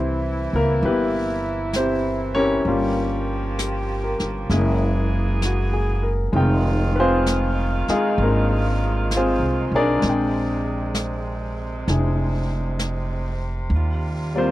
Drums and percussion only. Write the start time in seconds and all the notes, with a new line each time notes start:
0.81 brush sweep
1.73 brush sweep, snare, hi-hat pedal
2.66 brush sweep
3.59 brush sweep, snare, hi-hat pedal
4.19 snare
4.50 brush sweep, snare
5.42 brush sweep, snare, hi-hat pedal
6.35 brush sweep
7.26 brush sweep, snare, hi-hat pedal
7.88 snare
8.18 brush sweep
9.11 brush sweep, snare, hi-hat pedal
10.02 brush sweep, snare
10.95 brush sweep, snare, hi-hat pedal
11.88 brush sweep, snare
12.79 brush sweep, snare, hi-hat pedal
13.71 brush sweep